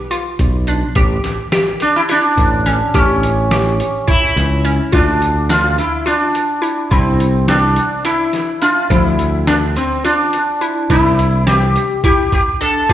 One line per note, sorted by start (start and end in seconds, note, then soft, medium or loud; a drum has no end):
0.11 0.55 F4 medium
0.11 closed hi-hat medium
0.11 shaker medium
0.39 0.83 B1 medium
0.39 kick medium
0.39 closed hi-hat medium
0.67 0.90 D4 medium
0.67 closed hi-hat medium
0.95 1.18 A1 loud
0.95 1.40 G4 medium
0.95 kick medium
0.95 closed hi-hat medium
0.95 shaker soft
1.24 snare soft
1.24 closed hi-hat medium
1.52 1.96 G4 medium
1.52 snare loud
1.52 closed hi-hat medium
1.80 1.95 D4 medium
1.80 closed hi-hat medium
1.96 2.01 E4 loud
2.09 2.91 D4 medium
2.09 2.53 E4 medium
2.09 closed hi-hat medium
2.09 shaker medium
2.38 2.81 A1 medium
2.38 kick medium
2.38 closed hi-hat medium
2.66 2.88 C#4 medium
2.66 snare soft
2.66 closed hi-hat medium
2.94 3.80 A1 medium
2.94 4.61 C#4 medium
2.94 3.38 G4 medium
2.94 kick medium
2.94 closed hi-hat medium
2.94 shaker medium
3.23 closed hi-hat medium
3.51 3.95 G4 medium
3.51 snare loud
3.51 closed hi-hat medium
3.80 closed hi-hat medium
4.08 4.51 E4 medium
4.08 4.97 E4 medium
4.08 kick loud
4.08 closed hi-hat medium
4.08 shaker medium
4.36 4.79 C#2 medium
4.36 snare soft
4.36 closed hi-hat medium
4.36 shaker soft
4.65 4.86 C#4 medium
4.65 closed hi-hat medium
4.65 shaker soft
4.92 5.79 D2 medium
4.92 5.46 D4 medium
4.92 5.36 F4 medium
4.92 kick loud
4.92 closed hi-hat medium
5.22 closed hi-hat medium
5.49 5.93 D4 medium
5.49 5.79 F4 medium
5.49 snare loud
5.49 closed hi-hat medium
5.78 6.06 E4 medium
5.78 closed hi-hat medium
6.06 6.91 D4 medium
6.06 6.50 F4 medium
6.06 closed hi-hat medium
6.35 closed hi-hat medium
6.62 6.84 E4 medium
6.62 closed hi-hat medium
6.91 7.77 C2 medium
6.91 7.48 C4 medium
6.91 7.35 E4 medium
6.91 kick medium
6.91 closed hi-hat medium
7.20 closed hi-hat medium
7.48 7.92 C4 medium
7.48 8.05 D4 medium
7.48 snare loud
7.48 closed hi-hat medium
7.76 closed hi-hat medium
8.05 8.61 E4 medium
8.05 8.49 E4 medium
8.05 closed hi-hat medium
8.33 snare soft
8.33 closed hi-hat medium
8.62 8.84 D4 medium
8.62 8.90 F4 medium
8.62 closed hi-hat medium
8.90 9.76 D2 medium
8.90 9.34 F3 medium
8.90 9.47 E4 medium
8.90 kick medium
8.90 closed hi-hat medium
9.19 closed hi-hat medium
9.47 9.91 D4 medium
9.47 9.55 D4 medium
9.47 snare loud
9.47 closed hi-hat medium
9.76 10.05 C4 medium
9.76 closed hi-hat medium
10.04 10.90 D4 medium
10.04 10.48 F4 medium
10.04 closed hi-hat medium
10.33 closed hi-hat medium
10.61 10.83 E4 medium
10.61 closed hi-hat medium
10.90 11.76 C2 medium
10.90 11.34 E4 loud
10.90 11.43 E4 medium
10.90 kick medium
10.90 closed hi-hat medium
11.19 closed hi-hat soft
11.47 11.91 C4 medium
11.47 12.00 G4 medium
11.47 snare loud
11.47 closed hi-hat medium
11.76 closed hi-hat medium
12.04 12.48 E4 medium
12.04 12.32 G4 medium
12.04 kick loud
12.04 closed hi-hat medium
12.32 12.41 G4 medium
12.32 kick medium
12.32 closed hi-hat medium
12.61 12.83 D4 medium
12.61 12.87 A4 medium
12.61 closed hi-hat medium
12.89 12.93 D2 medium
12.89 12.93 F4 medium
12.89 12.93 G4 medium
12.89 kick medium
12.89 closed hi-hat medium
12.89 shaker medium